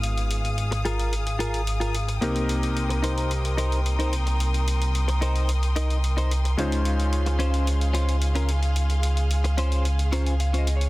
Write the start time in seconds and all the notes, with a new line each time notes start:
Already playing: G#1 G#3 B3 D#4 F4 G#4 F5 A#5 D#6
0.03 closed hi-hat
0.18 closed hi-hat
0.31 closed hi-hat
0.45 closed hi-hat
0.58 closed hi-hat
0.71 muted clean electric guitar stroke, closed hi-hat
0.85 F4 G#4 A#4, closed hi-hat
0.99 closed hi-hat
1.13 closed hi-hat
1.27 closed hi-hat
1.39 F4 G#4 A#4, closed hi-hat
1.54 closed hi-hat
1.67 closed hi-hat
1.80 F4 G#4 A#4, closed hi-hat
1.95 closed hi-hat
2.07 muted clean electric guitar stroke, closed hi-hat
2.21 C2 A#3 C4 D#4 G4 A#4 G5 C6, closed hi-hat
2.36 closed hi-hat
2.49 closed hi-hat
2.63 closed hi-hat
2.77 closed hi-hat
2.89 muted clean electric guitar stroke, closed hi-hat
3.03 D#4 A#4 C5, closed hi-hat
3.18 closed hi-hat
3.31 closed hi-hat
3.45 closed hi-hat
3.57 D#4 A#4 C5, closed hi-hat
3.72 closed hi-hat
3.86 closed hi-hat
3.99 D#4 A#4 C5, closed hi-hat
4.13 closed hi-hat
4.26 muted clean electric guitar stroke, closed hi-hat
4.40 closed hi-hat
4.54 closed hi-hat
4.68 closed hi-hat
4.82 closed hi-hat
4.95 closed hi-hat
5.08 muted clean electric guitar stroke, closed hi-hat
5.21 D#4 A#4 C5, closed hi-hat
5.36 closed hi-hat
5.49 closed hi-hat
5.63 closed hi-hat
5.76 D#4 A#4 D#5, closed hi-hat
5.90 closed hi-hat
6.04 closed hi-hat
6.17 D#4 A#4 C5, closed hi-hat
6.31 closed hi-hat
6.44 muted clean electric guitar stroke, closed hi-hat
6.57 C#2 G#3 C#4 D#4 F4 G#4 C5 F5, closed hi-hat
6.72 closed hi-hat
6.85 closed hi-hat
7.00 closed hi-hat
7.13 closed hi-hat
7.26 muted clean electric guitar stroke, closed hi-hat
7.39 C#4 F4 C5, closed hi-hat
7.54 closed hi-hat
7.67 closed hi-hat
7.81 closed hi-hat
7.93 C#4 F4 C5, closed hi-hat
8.09 closed hi-hat
8.22 closed hi-hat
8.35 C#4 F4 A#4, closed hi-hat
8.49 closed hi-hat
8.62 muted clean electric guitar stroke, closed hi-hat
8.76 closed hi-hat
8.90 closed hi-hat
9.03 closed hi-hat
9.17 closed hi-hat
9.31 closed hi-hat
9.44 muted clean electric guitar stroke, closed hi-hat
9.57 C#4 F4 C5, closed hi-hat
9.72 closed hi-hat
9.85 closed hi-hat
9.99 closed hi-hat
10.12 C#4 F4 C5 A#5, closed hi-hat
10.26 G#5, closed hi-hat
10.40 F5, closed hi-hat
10.53 C#4 F4 C5, closed hi-hat
10.58 D#5
10.67 closed hi-hat
10.76 C#5
10.81 muted clean electric guitar stroke, closed hi-hat